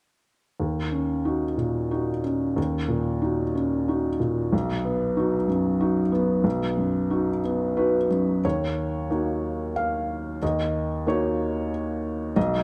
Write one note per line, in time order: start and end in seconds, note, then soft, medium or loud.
0.60 2.53 D#2 soft
0.92 1.45 C#4 soft
1.25 1.55 D#4 soft
1.25 1.55 F#4 soft
1.58 2.10 A#2 soft
1.91 2.21 D#4 soft
1.91 2.21 F#4 soft
2.24 2.76 C#4 soft
2.56 4.48 D#2 soft
2.88 3.42 A#2 soft
3.22 3.52 D#4 soft
3.22 3.52 F#4 soft
3.55 4.07 C#4 soft
3.88 4.17 D#4 soft
3.88 4.18 F#4 soft
4.20 4.52 A#2 soft
4.53 6.41 B1 soft
4.85 5.36 B3 soft
5.17 5.46 D#4 soft
5.17 5.46 F#4 soft
5.48 6.00 F#2 soft
5.81 6.09 D#4 soft
5.81 6.10 F#4 soft
6.12 6.64 B3 soft
6.44 8.40 B1 soft
6.78 7.30 F#2 soft
7.10 7.40 D#4 soft
7.10 7.40 F#4 soft
7.44 7.97 B3 soft
7.77 8.07 D#4 soft
7.77 8.07 F#4 soft
7.77 8.40 B4 soft
8.11 8.44 F#2 soft
8.45 9.08 D#2 soft
8.45 9.72 C#5 soft
9.10 10.37 A#3 soft
9.10 10.38 D#4 soft
9.10 10.38 F#4 soft
9.76 10.38 F5 medium
10.42 11.06 D#2 soft
10.42 11.04 D#5 soft
11.07 12.32 A#3 soft
11.07 12.32 D#4 soft
11.07 12.32 F#4 soft
11.07 11.68 C#5 medium
12.36 12.63 B1 soft
12.36 12.63 D#5 medium